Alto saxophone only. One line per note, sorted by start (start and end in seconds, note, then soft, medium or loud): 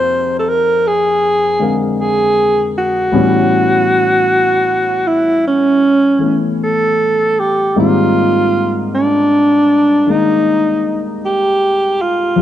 0.00 0.37 C5 medium
0.39 0.50 A4 medium
0.49 0.89 A#4 medium
0.87 1.82 G#4 medium
2.01 2.72 G#4 medium
2.78 5.09 F#4 medium
5.08 5.45 E4 medium
5.47 6.40 C#4 medium
6.64 7.41 A4 medium
7.40 7.77 G4 medium
7.80 8.90 F4 medium
8.95 10.12 D4 medium
10.11 11.06 D#4 medium
11.25 12.03 G4 medium
12.02 12.42 F4 medium